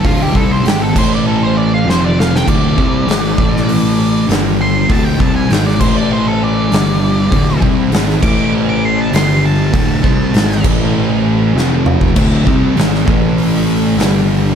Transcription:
<<
  \new Staff \with { instrumentName = "Lead electric guitar" } { \time 4/4 \key a \minor \tempo 4 = 99 f'16 g'16 a'16 c''16 g'16 a'16 c''16 d''16 a'16 c''16 d''16 f''16 c''16 d''16 f''16 g''16 | d''2. r8 c'''8 | a''16 g''16 a''16 gis''16 g''16 d''16 c''16 d''16 c''16 a'16 d''4.~ | d''8 r4 d'''8 r16 d'''16 c'''16 a''16 c'''8 a''8~ |
a''4. r2 r8 | r1 | }
  \new Staff \with { instrumentName = "Distorted electric guitar" } { \clef bass \time 4/4 \key a \minor <d, a, d>8 <c g c'>8 <gis, ees gis>8 <a, e a>4. <f, c f>4 | <d, a, d>8 <c g c'>8 <gis, ees gis>8 <a, e a>4. <g, d g>4 | <d, a, d>8 <c g c'>8 <gis, ees gis>8 <a, e a>4. <g, d g>4 | <d, a, d>8 <c g c'>8 <gis, ees gis>8 <a, e a>4. <g, d g>4 |
<d, a, d>8 <c g c'>8 <gis, ees gis>8 <a, e a>4. <f, c f>4 | <d, a, d>8 <c g c'>8 <gis, ees gis>8 <a, e a>4. <g, d g>4 | }
  \new Staff \with { instrumentName = "Distorted electric guitar" } { \clef bass \time 4/4 \key a \minor <d, a, d>8 <c g c'>8 <gis, ees gis>8 <a, e a>4. <f, c f>4 | <d, a, d>8 <c g c'>8 <gis, ees gis>8 <a, e a>4. <g, d g>4 | <d, a, d>8 <c g c'>8 <gis, ees gis>8 <a, e a>4. <g, d g>4 | <d, a, d>8 <c g c'>8 <gis, ees gis>8 <a, e a>4. <g, d g>4 |
<d, a, d>8 <c g c'>8 <gis, ees gis>8 <a, e a>4. <f, c f>4 | <d, a, d>8 <c g c'>8 <gis, ees gis>8 <a, e a>4. <g, d g>4 | }
  \new Staff \with { instrumentName = "Picked electric bass" } { \clef bass \time 4/4 \key a \minor r8 c,8 gis,,8 a,,4. f,,4 | d,,8 c,8 gis,,8 a,,4. g,,4 | d,,8 c,8 gis,,8 a,,4. g,,4 | d,,8 c,8 gis,,8 a,,4. g,,4 |
d,,8 c,8 gis,,8 a,,4. f,,4 | d,,8 c,8 gis,,8 a,,4. g,,4 | }
  \new DrumStaff \with { instrumentName = "Drums" } \drummode { \time 4/4 <hho bd>8 bd8 <hho sn>8 <cymc bd>8 r4 sn8 sn16 sn16 | <cymc bd>8 bd8 <hho sn>8 bd16 sn16 hho4 <hho sn>4 | <hho bd>8 bd8 <hho sn>16 sn16 <cymc bd>8 r4 <hho sn>4 | <hho bd>8 bd8 <hho sn>16 sn16 <cymc bd>8 r4 <hho sn>4 |
<hho bd>8 bd8 <hho sn>16 sn16 <cymc bd>8 r4 sn8 toml16 bd16 | <cymc bd>8 bd8 <hho sn>16 sn16 bd8 hho4 <hho sn>4 | }
>>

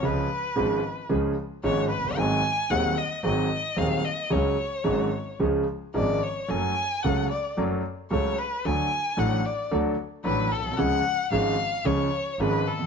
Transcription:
<<
  \new Staff \with { instrumentName = "Violin" } { \time 4/4 \key cis \phrygian \tempo 4 = 112 b'2 r4 cis''8 b'8 | gis''4 fis''8 dis''8 dis''4 eis''8 dis''8 | cis''2 r4 d''8 cis''8 | gis''4 fis''8 d''8 r4 cis''8 b'8 |
gis''4 fis''8 d''8 r4 b'8 a'8 | fis''4 eis''4 cis''8.~ cis''32 cis''32 b'8 a'8 | }
  \new Staff \with { instrumentName = "Grand piano" } { \clef bass \time 4/4 \key cis \phrygian <cis, cis eis gis cis' gis'>8 r8 <gis,, gis, eis gis cis' gis'>8 r8 <cis, cis eis gis cis' gis'>8 r8 <gis,, gis, eis gis cis' gis'>8 r32 eis,,32 fis,,32 g,,32 | <gis,, gis, fis bis dis' gis'>8 r8 <dis,, dis, fis bis dis' gis'>8 r8 <gis,, gis, fis bis dis' gis'>8 r8 <dis,, dis, fis bis dis' gis'>8 r8 | <cis, cis fis gis cis' gis'>8 r8 <gis,, gis, fis gis cis' gis'>8 r8 <cis, cis eis gis cis' gis'>8 r8 <gis,, gis, eis gis cis' gis'>8 r8 | <fis, fis a cis' a'>8 r8 <cis, cis fis a cis' a'>8 r8 <fis, fis a cis' a'>8 r8 <cis, cis fis a cis' a'>8 r8 |
<d, d fis a d' a'>8 r8 <a,, a, fis a d' a'>8 r8 <d, d fis a d' a'>8 r8 <a,, a, fis a d' a'>8 r32 ais,,32 b,,32 bis,,32 | <cis, cis eis gis cis' gis'>8 r8 <gis,, gis, eis gis cis' gis'>8 r8 <cis, cis eis gis cis' gis'>8 r8 <gis,, gis, eis gis cis' gis'>8 r32 dis,32 e,32 r32 | }
  \new Staff \with { instrumentName = "Double bass" } { \clef bass \time 4/4 \key cis \phrygian cis,8 r8 gis,,8 r8 cis,8 r8 gis,,8 fis,,8 | gis,,8 r8 dis,8 r8 gis,,8 r8 dis,8 r8 | cis,8 r8 gis,,8 r8 cis,8 r8 gis,,8 r8 | fis,,8 r8 cis,8 r8 fis,,8 r8 cis,8 r8 |
d,8 r8 a,,8 r8 d,8 r8 a,,8 b,,8 | cis,8 r8 gis,,8 r8 cis,8 r8 gis,,8 r8 | }
>>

